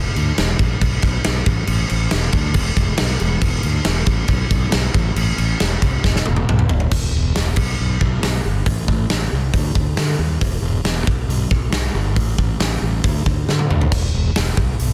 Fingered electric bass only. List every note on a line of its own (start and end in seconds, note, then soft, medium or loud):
0.16 0.31 D2 medium
0.38 0.53 E1 loud
0.59 0.74 A#1 medium
0.82 0.97 B1 loud
1.03 1.18 B1 medium
1.27 1.41 B1 medium
1.47 1.62 A1 loud
1.68 1.83 A1 loud
1.91 2.06 A1 loud
2.13 2.27 E1 medium
2.34 2.56 D2 loud
2.54 2.70 E1 loud
2.77 2.92 E1 loud
3.00 3.15 B1 medium
3.21 3.36 E1 medium
3.42 3.57 E1 loud
3.64 3.79 D2 loud
3.86 4.01 E1 loud
4.07 4.22 A1 medium
4.29 4.44 B1 medium
4.51 4.67 B1 medium
4.74 4.89 B1 medium
4.94 5.10 A1 loud
5.16 5.31 A1 loud
5.38 5.53 A1 medium
5.61 5.76 E1 loud
5.82 5.97 C2 medium
6.05 6.20 E1 medium
6.28 6.42 E1 medium
6.49 6.64 B1 medium
6.72 6.87 E1 medium
6.92 7.09 E1 loud
7.16 7.31 E1 medium
7.36 7.53 E1 medium
7.57 7.74 B1 medium
7.80 7.96 B1 medium
8.01 8.18 B1 medium
8.23 8.40 B1 medium
8.45 8.62 G1 medium
8.67 8.83 A1 loud
8.88 9.05 A1 medium
9.11 9.28 A1 medium
9.33 9.49 C2 medium
9.54 9.71 D2 medium
9.76 9.92 D2 medium
9.97 10.14 D3 medium
10.19 10.36 D#2 medium
10.41 10.58 E1 loud
10.62 10.79 E1 medium
10.84 11.01 E1 medium
11.07 11.24 B1 medium
11.28 11.45 B1 loud
11.51 11.68 B1 medium
11.72 11.89 B1 medium
11.94 12.17 G1 loud
12.17 12.33 A1 loud
12.38 12.55 A1 loud
12.59 12.76 A1 medium
12.82 12.99 A1 medium
13.05 13.21 D2 medium
13.26 13.43 D2 medium
13.50 13.66 D3 medium
13.70 13.87 D2 medium
13.92 14.08 E1 medium
14.14 14.31 E1 medium
14.37 14.53 E1 loud
14.58 14.74 B1 medium
14.80 14.93 B1 loud